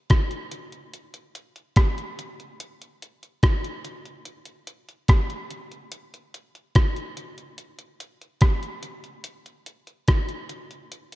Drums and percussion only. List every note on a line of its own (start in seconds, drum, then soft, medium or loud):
0.10 kick loud
0.10 cross-stick loud
0.10 closed hi-hat medium
0.31 closed hi-hat soft
0.51 closed hi-hat medium
0.72 closed hi-hat soft
0.94 closed hi-hat medium
1.14 closed hi-hat medium
1.35 closed hi-hat medium
1.56 closed hi-hat soft
1.76 kick loud
1.76 cross-stick loud
1.76 closed hi-hat medium
1.98 closed hi-hat soft
2.19 closed hi-hat medium
2.40 closed hi-hat soft
2.60 closed hi-hat medium
2.82 closed hi-hat soft
3.02 closed hi-hat medium
3.23 closed hi-hat soft
3.43 kick loud
3.43 cross-stick loud
3.43 closed hi-hat medium
3.64 closed hi-hat soft
3.85 closed hi-hat medium
4.05 closed hi-hat soft
4.25 closed hi-hat medium
4.45 closed hi-hat medium
4.67 closed hi-hat medium
4.89 closed hi-hat soft
5.08 kick loud
5.08 cross-stick medium
5.08 closed hi-hat medium
5.30 closed hi-hat soft
5.51 closed hi-hat medium
5.72 closed hi-hat soft
5.92 closed hi-hat medium
6.14 closed hi-hat soft
6.34 closed hi-hat medium
6.55 closed hi-hat soft
6.75 kick loud
6.75 cross-stick loud
6.75 closed hi-hat medium
6.96 closed hi-hat soft
7.17 closed hi-hat medium
7.38 closed hi-hat soft
7.58 closed hi-hat medium
7.79 closed hi-hat medium
8.00 closed hi-hat medium
8.21 closed hi-hat soft
8.41 kick loud
8.41 cross-stick medium
8.41 closed hi-hat medium
8.63 closed hi-hat soft
8.83 closed hi-hat medium
9.04 closed hi-hat soft
9.24 closed hi-hat medium
9.46 closed hi-hat soft
9.66 closed hi-hat medium
9.87 closed hi-hat soft
10.08 kick loud
10.08 cross-stick loud
10.08 closed hi-hat medium
10.29 closed hi-hat soft
10.49 closed hi-hat medium
10.71 closed hi-hat soft
10.92 closed hi-hat medium
11.12 closed hi-hat medium